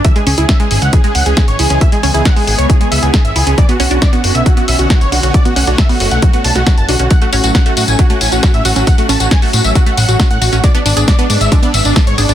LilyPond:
<<
  \new Staff \with { instrumentName = "Supersaw synth" } { \time 4/4 \key fis \minor \tempo 4 = 136 e''16 gis'16 gis'16 gis'16 e''16 gis'16 gis'16 fis''16 gis'16 gis'16 fis''16 gis'16 gis'16 cis''16 gis'16 gis'16 | e''16 gis'16 gis''16 gis'16 fis''16 gis'16 gis'16 cis''16 gis'16 gis'16 e''16 gis'16 gis'16 e''16 gis'16 gis'16 | d''16 fis'16 fis'16 fis'16 d''16 fis'16 fis'16 e''16 fis'16 fis'16 e''16 fis'16 fis'16 cis''16 fis'16 fis'16 | d''16 fis'16 fis''16 fis'16 e''16 fis'16 fis'16 fis''16 fis'16 fis'16 a''16 fis'16 fis'16 a''16 fis'16 fis'16 |
fis''16 fis'16 fis'16 fis'16 fis''16 fis'16 fis'16 gis''16 fis'16 fis'16 gis''16 fis'16 fis'16 e''16 fis'16 fis'16 | fis''16 fis'16 a''16 fis'16 gis''16 fis'16 fis'16 e''16 fis'16 fis'16 fis''16 fis'16 r16 fis''16 fis'16 fis'16 | d''16 d'16 d'16 d'16 d''16 d'16 d'16 e''16 d'16 d'16 e''16 d'16 d'16 cis''16 d'16 d'16 | }
  \new Staff \with { instrumentName = "Synth arpeggio sound" } { \time 4/4 \key fis \minor e16 gis16 cis'16 e'16 cis'16 gis16 r8 e16 gis16 r8 cis'16 r16 e'16 cis'16 | e16 gis16 cis'16 e'16 cis'16 gis16 r8 e16 gis16 r8 cis'16 r16 e'16 cis'16 | fis16 b16 cis'16 d'16 cis'16 b16 r8 fis16 b16 r8 cis'16 r16 d'16 cis'16 | fis16 b16 cis'16 d'16 cis'16 b16 r8 fis16 b16 r8 cis'16 r16 d'16 cis'16 |
fis16 a16 cis'16 fis'16 cis'16 a16 r8 fis16 a16 r8 cis'16 r16 fis'16 cis'16 | fis16 a16 cis'16 fis'16 cis'16 a16 r8 fis16 a16 r8 cis'16 r16 fis'16 cis'16 | gis16 b16 d'16 gis'16 d'16 b16 r8 gis16 b16 r8 d'16 r16 gis'16 d'16 | }
  \new Staff \with { instrumentName = "Supersaw synth" } { \time 4/4 \key fis \minor << { cis'1 | b1 | cis'1 | a1 |
cis'1~ | cis'1 | d'1 | } \\ { <e gis>1~ | <e gis>1 | d1~ | d1 |
<fis a>1~ | <fis a>1 | <gis b>1 | } >> }
  \new Staff \with { instrumentName = "Analog synth bass" } { \clef bass \time 4/4 \key fis \minor r8 cis,16 cis,16 r8 gis,,16 cis,16 r8 cis,16 cis,16 r16 gis,,16 cis,16 cis,16 | r8 cis,16 cis,16 r8 gis,,16 cis,16 r8 cis,16 cis,16 r16 gis,,16 cis,16 cis,16 | r8 b,,16 b,,16 r8 fis,,16 b,,16 r8 b,,16 b,,16 r16 fis,,16 b,,16 b,,16 | r8 b,,16 b,,16 r8 fis,,16 b,,16 r8 b,,16 b,,16 r16 fis,,16 b,,16 b,,16 |
r8 a,,16 a,,16 r8 a,16 a,,16 r8 a,,16 a,,16 r16 a,16 a,,16 a,,16 | r8 a,,16 a,,16 r8 a,16 a,,16 r8 a,,16 a,,16 r16 a,16 a,,16 a,,16 | r8 gis,,16 gis,,16 r8 gis,16 gis,,16 r8 gis,,16 gis,,16 r16 gis,16 gis,,16 gis,,16 | }
  \new DrumStaff \with { instrumentName = "Drums" } \drummode { \time 4/4 <hh bd>16 hh16 hho16 hh16 <hh bd sn>16 hh16 hho16 hh16 <hh bd>16 hh16 hho16 hh16 <hh bd sn>16 hh16 hho16 hh16 | <hh bd>16 hh16 hho16 hh16 <hh bd sn>16 hho16 hho16 hh16 <hh bd>16 hh16 hho16 hh16 <hh bd sn>16 hh16 hho16 hh16 | <hh bd>16 hh16 hho16 hh16 <hh bd sn>16 hh16 hho16 hh16 <hh bd>16 hh16 hho16 hh16 <hh bd sn>16 hh16 hho16 hh16 | <hh bd>16 hh16 hho16 hh16 <hh bd sn>16 hho16 hho16 hh16 <hh bd>16 hh16 hho16 <hh sn>16 <hh bd sn>16 hh16 hho16 hh16 |
<hh bd tamb>16 hh16 <hho tamb>16 <hh tamb>16 <hh bd sn>16 hh16 <hho tamb>16 <hh tamb>16 <hh bd>16 hh16 <hho tamb>16 <hh tamb>16 <hh bd sn tamb>16 hh16 <hho tamb>16 <hh tamb>16 | <hh bd tamb>16 hh16 <hho tamb>16 <hh tamb>16 <hh bd sn>16 hho16 <hho tamb>16 <hh tamb>16 <hh bd tamb>16 hh16 <hho tamb>16 <hh tamb>16 <hh bd sn tamb>16 hh16 <hho tamb>16 <hh tamb>16 | <hh bd tamb>16 hh16 <hho tamb>16 <hh tamb>16 <hh bd sn tamb>16 hh16 <hho tamb>16 <hh tamb>16 <hh bd tamb>16 hh16 <hho tamb>16 <hh tamb>16 <hh bd sn tamb>16 hh16 <hho tamb>16 <hh tamb>16 | }
>>